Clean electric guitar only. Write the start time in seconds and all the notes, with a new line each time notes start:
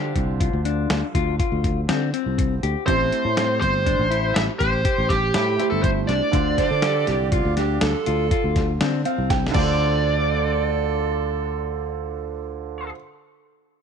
Already playing: G4
0.40 F4
0.65 D4
1.15 F4
1.39 F4
1.89 C4
2.14 C4
2.63 G4
2.87 C4
3.36 C4
3.86 D4
4.10 E4
4.60 G4
4.85 G4
5.34 E4
5.59 E4
6.09 D4
6.33 D4
6.83 G4
7.33 F4
7.57 D4
8.07 F4
8.31 F4
8.81 C4
9.06 C4
9.55 D4 F4
9.63 A4 D5